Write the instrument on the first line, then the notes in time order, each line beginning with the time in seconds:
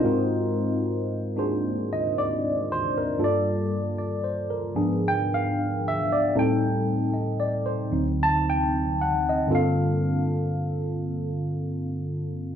tine electric piano
Already playing: D#4 C5 D#5
0.03 G#2 G#3 C4 F4 F#4 A#4
1.36 A#3 D4 F#4 G#4 C5
1.93 D#5
2.18 D5
2.72 C5
2.98 A#4
3.18 G2 G3 A#3 F4 A4
3.24 D5
3.98 D5
4.24 C5
4.50 A#4
4.75 G#2 F3 B3 D4 G#4
5.08 G5
5.34 F5
5.88 E5
6.12 D5
6.35 A2 G3 C4 D#4 A4
6.39 G5
7.14 D#5
7.40 D5
7.66 C5
7.91 D2 D3 F#3 C4 D#4
8.23 A5
8.50 G5
9.01 F#5
9.29 D#5
9.47 G2 D3 A#3 C4 F4
9.52 A4 F5